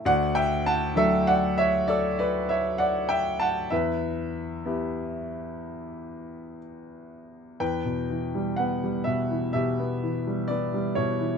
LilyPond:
<<
  \new Staff \with { instrumentName = "Grand piano" } { \time 4/4 \key e \dorian \tempo 4 = 63 << { \tuplet 3/2 { fis''8 g''8 a''8 e''8 fis''8 e''8 d''8 d''8 e''8 fis''8 g''8 a''8 } | e''2. r4 | g''4 fis''8 e''8 e''4 d''8 cis''8 | } \\ { \tuplet 3/2 { d''8 e''8 fis''8 a'8 d''8 cis''8 a'8 b'8 cis''8 d''8 e''8 fis''8 } | b'2. r4 | b'2 g'4. e'8 | } >> }
  \new Staff \with { instrumentName = "Grand piano" } { \clef bass \time 4/4 \key e \dorian d,4 <fis a d'>2. | e,4 <b e' g'>2. | e,16 b,16 e16 g16 b16 g16 b,16 e16 b,16 b16 e16 g16 b16 g16 b,16 e16 | }
>>